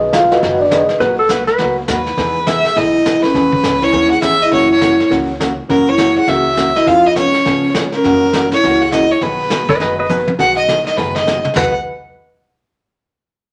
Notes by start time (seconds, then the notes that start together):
Already playing: B1 D#4 G#4 B4 D#5
0.12 B2 D#3 F#3 B3 D#4 F4 G#4 F5, kick, snare, hi-hat pedal
0.31 F#4 B4 D#5 F#5, snare
0.42 F#1 B2 D#3 F#3 B3 D#4 G#4, brush sweep, kick, snare
0.59 D4 D5
0.71 B2 D#3 F#3 B3 D#4 G#4 B4 D#5, kick, snare, hi-hat pedal
0.89 snare
1.00 B1 B2 F#3 A#3 D#4 F#4 B4, brush sweep, kick, snare
1.19 A4
1.29 B2 F#3 A#3 D#4 F#4 B4, kick, snare, hi-hat pedal
1.47 B4, snare
1.58 C#2 B2 F#3 A#3 D#4 F#4, brush sweep, kick, snare
1.88 D#2 B2 F#3 A#3 D#4 F#4 B4, kick, snare, hi-hat pedal
2.06 snare
2.17 E2 E3 B3 D#4 G#4, brush sweep, kick, snare
2.47 E3 B3 D#4 G#4 E5, kick, snare, hi-hat pedal
2.65 snare
2.75 B1 E3 B3 D#4 E4 G#4 D#5, brush sweep, kick, snare
3.05 E3 B3 D#4 G#4, kick, snare, hi-hat pedal
3.23 C#4 B4, snare
3.34 E2 E3 B3 C#4 G#4, brush sweep, kick, snare
3.52 kick
3.63 C#2 E3 B3 C#4 G#4, kick, snare, hi-hat pedal
3.82 E4 C#5, snare
3.92 D#2 E3 B3 C#4 G#4, brush sweep, kick, snare
4.11 G#4 F#5
4.22 E2 E3 B3 C#4 G#4 E5, kick, snare, hi-hat pedal
4.42 E4 D#5
4.51 F#2 C#3 E3 A#3 C#4 E4 F#4 C#5, brush sweep, kick, snare
4.71 E4 C#5
4.81 C#3 E3 A#3 C#4 F#4, kick, snare, hi-hat pedal
5.00 snare
5.10 C#2 C#3 E3 A#3 C#4 F#4, brush sweep, kick, snare
5.40 C#3 E3 A#3 C#4 F#4, kick, snare, hi-hat pedal
5.69 F#2 C#3 E3 A#3 C#4 F#4 A#4, brush sweep, kick, snare
5.88 E4 C#5
5.98 C#3 E3 A#3 C#4 F#4, kick, snare, hi-hat pedal
6.17 G#4 F#5
6.27 C#2 C#3 E3 A#3 C#4 F#4 E5, brush sweep, kick, snare
6.57 C#3 E3 A#3 C#4 F#4, kick, snare, hi-hat pedal
6.76 E4 D#5, snare
6.86 F2 F3 B3 C#4 F4 G#4 F5, brush sweep, kick, snare
7.06 D#4 D#5
7.16 F3 B3 C#4 G#4 C#5, kick, snare, hi-hat pedal
7.34 snare
7.45 C#3 F3 B3 C#4 G#4, brush sweep, kick, snare
7.75 F3 B3 C#4 G#4, kick, snare, hi-hat pedal
7.92 C#4 A#4, snare
8.04 F#2 C#3 E3 A#3 C#4 F#4, brush sweep, kick, snare
8.33 C#3 E3 A#3 C#4 F#4, kick, snare, hi-hat pedal
8.52 E4 C#5, snare
8.63 C#2 C#3 E3 A#3 C#4 F#4, brush sweep, kick, snare
8.81 G#4 F#5
8.92 C#3 E3 A#3 C#4 E4 F#4 D#5, kick, snare, hi-hat pedal
9.11 D#4 C#5
9.21 B1 B2 D#3 F#3 B3 D#4 G#4 B4, brush sweep, kick, snare
9.50 B2 D#3 F#3 B3 D#4 G#4, kick, snare, hi-hat pedal
9.69 B4 D#5, kick, snare
9.80 F#1 B2 D#3 F#3 B3 D#4 G#4 B4 D#5, brush sweep, kick, snare
9.99 B4 D#5
10.09 B2 D#3 F#3 B3 D#4 G#4 B4, hi-hat pedal, high tom
10.28 high tom
10.38 B1 B2 D#3 F#3 B3 D#4 F#4 G#4 F#5, brush sweep, kick, snare
10.56 D#4 D#5
10.68 B2 D#3 F#3 B3 D#4 G#4, kick, snare, hi-hat pedal
10.86 D#4 D#5, snare
10.97 F#1 B2 D#3 F#3 B3 D#4 G#4 B4, snare
11.15 D#4 D#5, snare
11.26 B2 D#3 F#3 B3 D#4 G#4, snare, hi-hat pedal
11.45 mid tom
11.56 B1 B2 D#3 F#3 B3 D#4 G#4 B4 F#5, snare, floor tom, crash